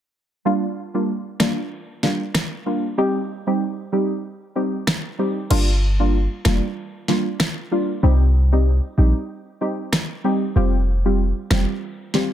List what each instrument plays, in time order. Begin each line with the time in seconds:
0.45 synth stab G3 A#3 D4 F4
0.94 synth stab G3 A#3 D4 F4
1.40 synth stab G3 A#3 D4 F4, cross-stick, snare
2.03 synth stab G3 A#3 D4 F4, snare
2.34 cross-stick, snare
2.66 synth stab G3 A#3 D4 F4
2.98 synth stab G3 C4 D#4 G4
3.47 synth stab G3 C4 D#4 G4
3.92 synth stab G3 C4 D#4 G4
4.55 synth stab G3 C4 D#4 G4
4.87 cross-stick, snare
5.19 synth stab G3 C4 D#4 G4
5.50 808-style bass G1, synth stab G3 A#3 D4 F4, crash
5.99 synth stab G3 A#3 D4 F4
6.45 808-style bass F1, synth stab G3 A#3 D4 F4, cross-stick, snare
7.08 synth stab G3 A#3 D4 F4, snare
7.40 cross-stick, snare
7.71 synth stab G3 A#3 D4 F4
8.03 808-style bass C2, synth stab G3 C4 D#4 G4
8.52 synth stab G3 C4 D#4 G4
8.98 808-style bass A#1, synth stab G3 C4 D#4 G4
9.61 synth stab G3 C4 D#4 G4
9.93 cross-stick, snare
10.24 synth stab G3 C4 D#4 G4
10.56 808-style bass F1, synth stab G3 C4 F4 G4
11.05 synth stab G3 C4 F4 G4
11.51 808-style bass F1, synth stab G3 C4 F4 G4, cross-stick, snare
12.14 synth stab G3 C4 F4 G4, snare